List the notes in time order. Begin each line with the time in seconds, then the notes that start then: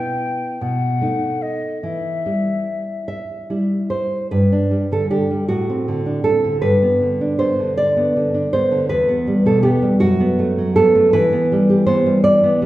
Already playing: B3 E4 G5
0.61 B2 F#5
1.01 A3 D#4
1.42 D#5
1.82 E3 E5
2.26 G3 E4
3.08 E5
3.50 G3 E4
3.90 C5
4.31 G2 B4
4.52 D4
4.71 G3
4.92 D3 A4
5.11 D4 G4
5.31 G3
5.48 A2 F#4
5.70 C4
5.88 D3
6.06 D4
6.24 C4 A4
6.44 D3
6.62 G2 B4
6.82 B3
7.02 D3
7.21 D4
7.39 B3 C5
7.59 D3
7.77 D5
7.97 B3
8.16 D3
8.34 D4
8.53 B3 C5
8.71 D3
8.89 E2 B4
9.09 B3
9.27 G3
9.46 B2 A4
9.63 B3 G4
9.82 G3
10.00 F#2 F#4
10.20 B3
10.39 A3
10.58 F#3
10.76 B3 A4
10.95 A3
11.13 E3 B4
11.33 B3
11.52 G3
11.70 G4
11.86 B3 C5
12.06 G3
12.24 D5
12.44 B3
12.62 G3